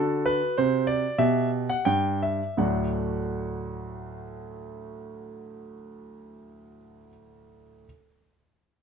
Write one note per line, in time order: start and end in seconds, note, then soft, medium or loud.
0.00 0.40 D3 soft
0.00 1.16 F#4 soft
0.00 0.25 A4 medium
0.26 0.57 B4 medium
0.58 1.03 C3 medium
0.58 0.85 C5 medium
0.87 1.19 D5 medium
1.18 1.67 B2 medium
1.18 2.58 G4 soft
1.18 1.49 E5 medium
1.70 1.87 F#5 medium
1.85 2.40 G2 soft
1.85 2.19 G5 medium
2.23 2.61 E5 soft
2.57 7.07 D2 soft
2.57 7.07 A2 soft
2.57 7.08 F#3 soft
2.57 7.08 A3 soft
2.57 7.08 D4 soft
2.57 7.08 F#4 soft
2.57 7.08 F#5 soft